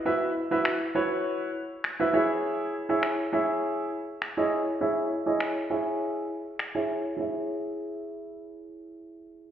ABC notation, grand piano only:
X:1
M:4/4
L:1/16
Q:1/4=101
K:C#m
V:1 name="Grand piano"
[EFBe]2 z [EFBe]2 z [EFBc]4 z3 [EFBe] [EGce]2- | [EGce]2 z [EGce]2 z [EGce]4 z3 [EGcd]2 z | [EGce]2 z [EGcd]2 z [EGce]4 z3 [EGce]2 z | [EGce]16 |]